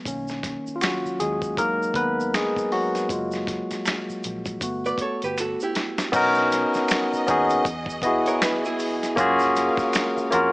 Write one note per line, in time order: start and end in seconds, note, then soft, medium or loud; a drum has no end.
0.05 0.56 B1 loud
0.05 1.54 D#3 medium
0.05 1.54 A#3 soft
0.05 1.55 C#4 medium
0.05 kick loud
0.05 closed hi-hat medium
0.05 shaker medium
0.28 snare soft
0.28 shaker soft
0.43 kick medium
0.43 snare soft
0.43 closed hi-hat medium
0.67 muted fingered electric bass stroke soft
0.67 shaker soft
0.76 0.82 F4 medium
0.81 1.18 F#3 medium
0.81 1.21 F#4 medium
0.81 finger snap medium
0.81 snare medium
0.81 closed hi-hat medium
0.81 shaker medium
0.84 finger snap medium
1.06 muted fingered electric bass stroke soft
1.06 shaker soft
1.20 1.58 D#2 medium
1.20 1.56 G#3 medium
1.20 1.55 G#4 medium
1.20 closed hi-hat medium
1.20 shaker soft
1.42 kick medium
1.42 shaker soft
1.57 1.90 E2 loud
1.57 2.72 F#3 medium
1.57 2.34 G#3 soft
1.57 1.94 A#3 medium
1.57 3.06 D#4 medium
1.57 1.97 A#4 loud
1.57 kick medium
1.57 closed hi-hat medium
1.57 shaker medium
1.83 shaker soft
1.94 2.46 D#2 medium
1.94 2.32 B3 medium
1.94 2.35 B4 loud
1.94 kick medium
1.94 closed hi-hat medium
2.20 shaker soft
2.34 2.70 G#3 medium
2.34 2.69 G#4 medium
2.34 finger snap medium
2.34 snare loud
2.34 closed hi-hat medium
2.34 shaker medium
2.56 kick medium
2.56 shaker soft
2.72 4.20 F#3 medium
2.72 4.20 F#4 medium
2.72 open hi-hat soft
2.95 snare soft
2.95 closed hi-hat soft
2.95 shaker soft
3.09 3.60 F#1 loud
3.09 3.63 G#3 medium
3.09 3.63 A#3 medium
3.09 3.63 F4 medium
3.09 kick medium
3.09 closed hi-hat medium
3.09 shaker medium
3.32 snare soft
3.32 shaker soft
3.47 kick medium
3.47 snare soft
3.47 closed hi-hat medium
3.71 muted fingered electric bass stroke soft
3.71 snare soft
3.71 closed hi-hat soft
3.71 shaker soft
3.86 finger snap medium
3.86 snare medium
3.86 closed hi-hat medium
3.86 shaker medium
3.88 finger snap medium
4.09 muted fingered electric bass stroke soft
4.09 shaker soft
4.23 4.56 A#1 medium
4.23 closed hi-hat medium
4.23 shaker soft
4.46 kick medium
4.46 closed hi-hat soft
4.46 shaker soft
4.61 4.94 G1 medium
4.61 5.72 A3 soft
4.61 5.72 B3 soft
4.61 5.72 F#4 medium
4.61 kick medium
4.61 closed hi-hat medium
4.61 shaker medium
4.86 5.00 B4 medium
4.86 5.00 D5 medium
4.86 shaker soft
4.98 5.22 C#5 medium
4.98 muted fingered electric bass stroke soft
4.98 kick medium
4.98 closed hi-hat medium
5.02 5.22 A4 medium
5.22 5.55 G1 medium
5.22 5.38 G4 medium
5.22 5.38 B4 medium
5.22 closed hi-hat soft
5.22 shaker soft
5.38 5.60 F#4 medium
5.38 5.60 A4 medium
5.38 finger snap medium
5.38 closed hi-hat medium
5.38 shaker medium
5.60 6.13 E4 medium
5.60 6.12 G4 medium
5.60 shaker soft
5.75 snare medium
5.75 closed hi-hat medium
5.98 snare medium
5.98 closed hi-hat soft
5.98 shaker soft
6.12 6.64 B1 loud
6.12 7.18 B3 loud
6.12 7.64 B3 medium
6.12 7.19 C#4 loud
6.12 7.20 D#4 loud
6.12 7.20 F#4 loud
6.12 7.64 A#4 medium
6.12 9.14 D#5 medium
6.12 kick loud
6.12 closed hi-hat medium
6.12 crash loud
6.12 shaker medium
6.16 7.21 A#4 loud
6.34 snare soft
6.34 shaker soft
6.52 snare soft
6.52 closed hi-hat medium
6.52 shaker soft
6.74 muted fingered electric bass stroke soft
6.74 snare soft
6.74 shaker soft
6.88 finger snap medium
6.88 snare loud
6.88 closed hi-hat medium
6.88 shaker medium
6.92 finger snap medium
7.13 muted fingered electric bass stroke soft
7.13 shaker soft
7.26 7.60 D#2 medium
7.26 7.65 B3 medium
7.26 7.65 C#4 medium
7.26 7.66 D#4 medium
7.26 7.67 F#4 medium
7.26 kick medium
7.26 closed hi-hat medium
7.26 shaker soft
7.31 7.67 G#4 loud
7.50 closed hi-hat soft
7.50 shaker soft
7.65 8.29 E2 loud
7.65 9.16 E3 medium
7.65 9.16 F#4 medium
7.65 10.52 G#4 medium
7.65 kick loud
7.65 closed hi-hat medium
7.65 shaker medium
7.86 kick medium
7.86 shaker soft
8.02 9.09 B3 medium
8.02 9.10 E4 medium
8.02 9.10 F#4 medium
8.02 9.09 D#5 medium
8.02 kick medium
8.02 closed hi-hat medium
8.07 9.11 G#4 medium
8.26 8.42 A#4 medium
8.26 8.41 C#5 medium
8.26 closed hi-hat soft
8.26 shaker soft
8.42 8.64 G#4 medium
8.42 8.63 B4 medium
8.42 finger snap medium
8.42 finger snap loud
8.42 snare loud
8.42 closed hi-hat medium
8.42 shaker medium
8.65 9.16 E4 medium
8.65 9.16 G#4 medium
8.65 shaker soft
8.79 open hi-hat soft
8.79 shaker soft
9.03 snare soft
9.03 closed hi-hat soft
9.03 shaker soft
9.16 9.68 F#2 loud
9.16 10.52 G#3 medium
9.16 10.22 A#3 loud
9.16 10.23 C#4 loud
9.16 10.24 F4 loud
9.16 10.24 F#4 loud
9.16 10.52 A#4 medium
9.16 10.52 F5 medium
9.16 kick loud
9.16 closed hi-hat medium
9.16 shaker medium
9.20 10.25 G#4 loud
9.39 snare soft
9.39 shaker soft
9.56 snare soft
9.56 closed hi-hat medium
9.56 shaker soft
9.77 muted fingered electric bass stroke soft
9.77 kick loud
9.77 snare soft
9.77 shaker soft
9.93 finger snap medium
9.93 snare loud
9.93 closed hi-hat medium
9.93 shaker medium
9.96 finger snap medium
10.17 muted fingered electric bass stroke soft
10.17 shaker soft
10.30 10.52 F2 medium
10.30 10.52 A#3 medium
10.30 10.52 C#4 medium
10.30 10.52 F4 medium
10.30 10.52 F#4 medium
10.30 closed hi-hat medium
10.30 shaker soft
10.35 10.52 A#4 loud